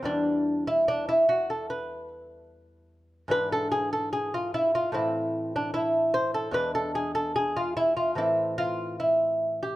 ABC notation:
X:1
M:4/4
L:1/16
Q:1/4=74
K:Em
V:1 name="Lute"
D3 E D E F A B2 z6 | [K:Am] B A ^G A G F E F E3 D E2 c A | B A ^G A G F E F E2 F2 E3 =G |]
V:2 name="Lute" clef=bass
[E,,E,G,]16 | [K:Am] [^G,,E,D]8 [A,,E,C]8 | [E,,^G,D]8 [A,,E,C]8 |]